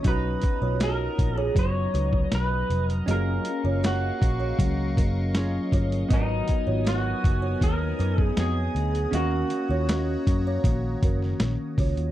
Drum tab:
HH |x-x-x-x-x-x-x-xx|x-x-x-x-x-x-x-xx|x-x-x-x-x-x-x-xx|x-x-x-x-x-x-x-ox|
SD |----o-------o---|----o-------o---|----o-------o---|----o------oo---|
BD |o-o---o-o--o----|------o-o-o---o-|o-o---o-o--o----|------o-o-o---o-|